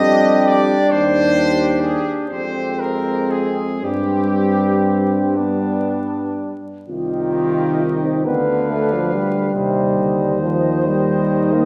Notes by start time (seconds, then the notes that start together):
Already playing: F2 G3 D4 G4 D#5
0.47 D5
0.89 D#2 G4 C5
1.81 G#4
2.28 F2 G#3 C4 C5
2.78 A#4
3.30 G#4
3.82 G2 G3 C4 G4
5.36 G3 B3 D4
6.88 C2 D#3 F4 G4 D#5
7.81 D#4
8.04 C4
8.25 D2 D3 B3 B4 F5
8.70 A3
8.93 F3
9.13 G3
9.54 D#2 C3 C5 D#5
9.95 D3
10.40 D#3 F3
10.86 G3
11.54 A#3